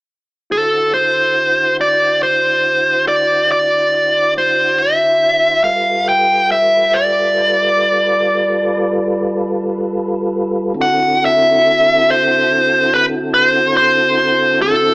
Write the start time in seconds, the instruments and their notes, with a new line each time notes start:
0.50 tonewheel organ D3 E4 F#4 C5, lead electric guitar A4
0.94 lead electric guitar C5
1.81 lead electric guitar D5
2.23 lead electric guitar C5
3.08 lead electric guitar D5
3.52 lead electric guitar D5
4.38 lead electric guitar C5
4.78 lead electric guitar E5
5.63 tonewheel organ G3 F4 A4 B4, lead electric guitar F5
6.09 lead electric guitar G5
6.52 lead electric guitar E5
6.94 lead electric guitar D5
10.74 tonewheel organ D3 C4 E4 F#4 A4
10.81 lead electric guitar F#5
11.25 lead electric guitar E5
12.11 lead electric guitar C5
12.94 lead electric guitar B4
13.34 lead electric guitar B4
13.45 lead electric guitar C5
13.77 lead electric guitar C5
14.62 lead electric guitar A4